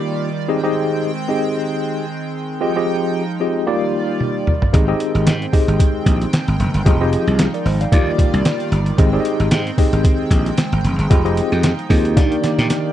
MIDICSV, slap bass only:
0, 0, Header, 1, 2, 480
1, 0, Start_track
1, 0, Tempo, 530973
1, 441, Time_signature, 4, 2, 24, 8
1, 11685, End_track
2, 0, Start_track
2, 0, Title_t, "Slap bass"
2, 0, Program_c, 0, 36
2, 4282, Note_on_c, 0, 32, 115
2, 4451, Note_off_c, 0, 32, 0
2, 4653, Note_on_c, 0, 32, 103
2, 4759, Note_on_c, 0, 44, 98
2, 4773, Note_off_c, 0, 32, 0
2, 4929, Note_off_c, 0, 44, 0
2, 5134, Note_on_c, 0, 32, 86
2, 5209, Note_off_c, 0, 32, 0
2, 5478, Note_on_c, 0, 34, 96
2, 5648, Note_off_c, 0, 34, 0
2, 5858, Note_on_c, 0, 32, 98
2, 5931, Note_off_c, 0, 32, 0
2, 5962, Note_on_c, 0, 29, 92
2, 6056, Note_off_c, 0, 29, 0
2, 6096, Note_on_c, 0, 31, 103
2, 6170, Note_off_c, 0, 31, 0
2, 6201, Note_on_c, 0, 29, 113
2, 6464, Note_off_c, 0, 29, 0
2, 6575, Note_on_c, 0, 36, 90
2, 6744, Note_off_c, 0, 36, 0
2, 6920, Note_on_c, 0, 32, 97
2, 7089, Note_off_c, 0, 32, 0
2, 7160, Note_on_c, 0, 39, 119
2, 7329, Note_off_c, 0, 39, 0
2, 7535, Note_on_c, 0, 36, 96
2, 7610, Note_off_c, 0, 36, 0
2, 7881, Note_on_c, 0, 31, 95
2, 8050, Note_off_c, 0, 31, 0
2, 8121, Note_on_c, 0, 32, 118
2, 8290, Note_off_c, 0, 32, 0
2, 8495, Note_on_c, 0, 32, 100
2, 8570, Note_off_c, 0, 32, 0
2, 8599, Note_on_c, 0, 44, 106
2, 8769, Note_off_c, 0, 44, 0
2, 8974, Note_on_c, 0, 32, 91
2, 9049, Note_off_c, 0, 32, 0
2, 9316, Note_on_c, 0, 34, 96
2, 9487, Note_off_c, 0, 34, 0
2, 9695, Note_on_c, 0, 32, 100
2, 9769, Note_off_c, 0, 32, 0
2, 9800, Note_on_c, 0, 29, 89
2, 9895, Note_off_c, 0, 29, 0
2, 9934, Note_on_c, 0, 31, 98
2, 10009, Note_off_c, 0, 31, 0
2, 10038, Note_on_c, 0, 29, 117
2, 10303, Note_off_c, 0, 29, 0
2, 10414, Note_on_c, 0, 41, 87
2, 10584, Note_off_c, 0, 41, 0
2, 10757, Note_on_c, 0, 39, 96
2, 10998, Note_on_c, 0, 51, 106
2, 11011, Note_off_c, 0, 39, 0
2, 11168, Note_off_c, 0, 51, 0
2, 11376, Note_on_c, 0, 46, 93
2, 11450, Note_off_c, 0, 46, 0
2, 11685, End_track
0, 0, End_of_file